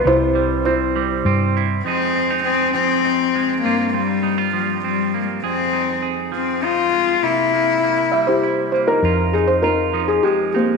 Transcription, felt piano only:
\new Staff \with { instrumentName = "Felt piano" } { \time 3/4 \key f \minor \tempo 4 = 100 << { c''4 c''4. r8 | r2. | r2. | r2. |
r4. e''16 c''8. c''16 bes'16~ | bes'8 aes'16 c''16 bes'8. aes'16 g'8 g'8 | } \\ { e'4 e'4. r8 | r2. | r2. | r2. |
r4. r16 <e' g'>4 ees'16~ | ees'4 ees'4. <bes c'>8 | } >> }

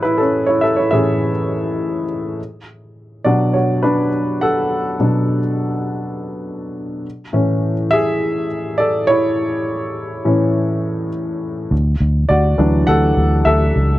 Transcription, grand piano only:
<<
  \new Staff \with { instrumentName = "Grand piano" } { \time 4/4 \key a \major \tempo 4 = 103 <e' b'>16 <cis' a'>8 <e' cis''>16 <a' e''>16 <e' cis''>16 <gis' e''>2 r8 | r4. <fis' d''>8 <fis' cis''>8 <d' b'>4 <a' fis''>8~ | <a' fis''>8 r2. r8 | r4. <gis' e''>4 r8 <a' d''>8 <e' cis''>8~ |
<e' cis''>2. r4 | r4 <fis' d''>4 <a' fis''>4 <a' e''>4 | }
  \new Staff \with { instrumentName = "Grand piano" } { \clef bass \time 4/4 \key a \major r4. <a, e cis'>8 r2 | r4. <b, fis d'>4. r4 | r8 <b, fis d'>8 r2. | r8 <a, e cis'>8 r2. |
r4. <a, e cis'>4. r4 | r4. <e fis d'>4. r4 | }
>>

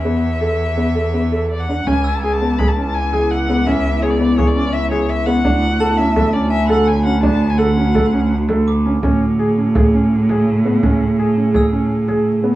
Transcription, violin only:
\new Staff \with { instrumentName = "Violin" } { \time 5/4 \key cis \phrygian \tempo 4 = 167 e''1 d''16 fis''8. | gis''8. a''16 gis''16 a''8. b''16 a''8. gis''4 fis''4 | e''4 cis''16 d''8. cis''16 d''8. e''8 cis''8 e''8 fis''8~ | fis''4. e''4 d''8 e''8 fis''8 gis''8 fis''8 |
a''8. gis''16 fis''2 r2 | r1 r4 | r1 r4 | }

